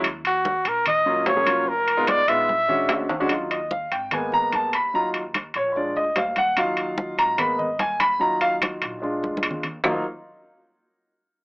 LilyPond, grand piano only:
\new Staff \with { instrumentName = "Grand piano" } { \time 4/4 \key ees \minor \tempo 4 = 147 << { r2 r8 <ges bes des' f'>8 r16 <ges bes des' aes'>16 <ges bes des' f'>8 | r8. <aes ces' ees' f'>8 r16 <aes ces' ees' f'>8 r8 <aes cis' d' fis'>4 r16 <aes cis' d' fis'>16 | r8 ees''8 f''8 g''8 aes''8 bes''8 a''8 ces'''8 | bes''8 r4 des''8 <des'' d''>8 ees''8 f''8 ges''8 |
f''4. bes''8 ces'''8 ees''8 aes''8 ces'''8 | bes''8 f''8 r2. | <ges bes ees' f'>8 r2. r8 | } \\ { r1 | r1 | <ges ees' f'>8 r4. <aes bes ces'>4. r8 | <ges ees' f'>8 r4. <aes d' f'>8 r4. |
<ges ees' f'>2 <aes bes ces'>8 r4. | <ges ees' f'>2 <aes d' f'>4. r8 | r1 | } >> }